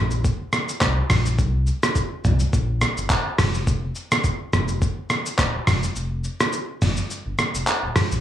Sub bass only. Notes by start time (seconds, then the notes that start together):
Already playing: A#1
0.81 C2
1.10 A#1
1.39 C2
2.24 C2
2.53 A#1
2.97 G1
3.39 F1
4.53 F1
5.39 D#1
5.67 F1
5.96 F1
6.82 G1
7.26 G1
7.54 F1
7.83 D#1
8.11 A#1